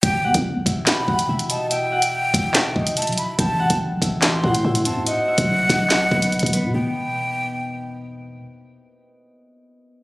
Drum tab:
HH |x-----------------x-----------------x-----------x-----------------x-----------x-----x-----------|x-----------------x-----------------x-----------x-----------------x-----x--x--x--x--x-----------|x-----------------x-----------------x-----------x-----------------x-----------x-----x-----------|x-----------------x-----------------x-----------x-----------------x-----x---x---x---x-----------|
CP |------------------------------------------------x-----------------------------------------------|------------------------------------------------x-----------------------------------------------|------------------------------------------------x-----------------------------------------------|------------------------------------------------x-----------------------------------------------|
SD |------------------------------------------------o-----------------------------------------------|------------------------------------------------o-----------------------------------------------|------------------------------------------------o-----------------------------------------------|------------------------------------o-----------o-----------------------------------------------|
BD |o-----------------o-----------------o-----------------------o-----------------------------------|------------------------------------o-----------------------o-----------------------------------|o-----------------o-----------------o-----------------------o-----------------------------------|------------------o-----------------o-----------------------o-----------------o-----------------|

HH |------------------------------------------------------------------------------------------------|------------------------------------------------------------------------------------------------|
CP |------------------------------------------------------------------------------------------------|------------------------------------------------------------------------------------------------|
SD |------------------------------------------------------------------------------------------------|------------------------------------------------------------------------------------------------|
BD |------------------------------------------------------------------------------------------------|------------------------------------------------------------------------------------------------|